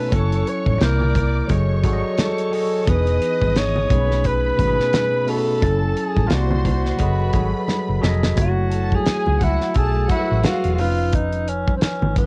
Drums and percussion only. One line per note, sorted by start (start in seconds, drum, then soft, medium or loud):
0.11 kick loud
0.11 closed hi-hat loud
0.11 muted conga soft
0.32 closed hi-hat soft
0.32 muted conga soft
0.47 closed hi-hat medium
0.66 kick medium
0.66 high conga medium
0.81 snare loud
0.81 closed hi-hat medium
0.81 muted conga soft
1.01 muted conga soft
1.01 low conga medium
1.15 kick loud
1.15 closed hi-hat medium
1.15 high conga medium
1.15 low conga medium
1.49 kick medium
1.49 closed hi-hat medium
1.69 muted conga soft
1.84 kick medium
1.84 closed hi-hat medium
1.84 high conga soft
2.18 snare loud
2.18 closed hi-hat medium
2.18 muted conga soft
2.18 high conga medium
2.38 closed hi-hat soft
2.53 open hi-hat medium
2.87 kick loud
2.87 closed hi-hat loud
2.87 muted conga soft
3.07 closed hi-hat soft
3.22 closed hi-hat medium
3.41 kick medium
3.41 high conga medium
3.56 snare loud
3.56 closed hi-hat medium
3.76 muted conga soft
3.76 low conga medium
3.90 kick loud
3.90 closed hi-hat medium
3.90 high conga medium
3.90 low conga medium
4.11 snare soft
4.24 kick medium
4.24 closed hi-hat medium
4.45 muted conga soft
4.59 kick medium
4.59 closed hi-hat medium
4.59 high conga soft
4.80 snare soft
4.93 snare loud
4.93 closed hi-hat medium
4.93 high conga medium
5.14 muted conga soft
5.28 open hi-hat medium
5.62 kick loud
5.62 closed hi-hat loud
5.62 low conga medium
5.82 muted conga soft
5.97 closed hi-hat medium
6.16 kick medium
6.16 high conga medium
6.30 snare loud
6.30 closed hi-hat medium
6.51 low conga medium
6.65 kick medium
6.65 closed hi-hat medium
6.65 high conga medium
6.65 low conga medium
6.86 snare soft
6.99 kick medium
6.99 closed hi-hat medium
7.20 muted conga soft
7.33 kick medium
7.33 closed hi-hat medium
7.33 high conga soft
7.68 snare medium
7.68 muted conga soft
7.68 high conga medium
7.88 muted conga soft
8.03 snare medium
8.23 snare medium
8.36 kick loud
8.36 closed hi-hat loud
8.36 low conga medium
8.72 closed hi-hat medium
8.92 kick medium
8.92 high conga medium
9.06 snare medium
9.06 closed hi-hat medium
9.26 muted conga soft
9.26 low conga medium
9.41 kick medium
9.41 closed hi-hat medium
9.41 high conga medium
9.41 low conga medium
9.61 snare soft
9.74 kick medium
9.74 closed hi-hat medium
9.96 muted conga soft
10.09 kick medium
10.09 closed hi-hat medium
10.09 high conga soft
10.43 snare loud
10.43 closed hi-hat medium
10.43 muted conga soft
10.43 high conga medium
10.64 closed hi-hat medium
10.78 open hi-hat medium
11.12 kick loud
11.12 closed hi-hat loud
11.12 low conga medium
11.32 closed hi-hat medium
11.32 muted conga soft
11.48 closed hi-hat medium
11.68 kick medium
11.68 high conga medium
11.81 snare loud
11.81 closed hi-hat medium
11.81 muted conga soft
12.02 muted conga soft
12.02 low conga medium
12.16 kick loud
12.16 closed hi-hat medium
12.16 high conga medium
12.16 low conga medium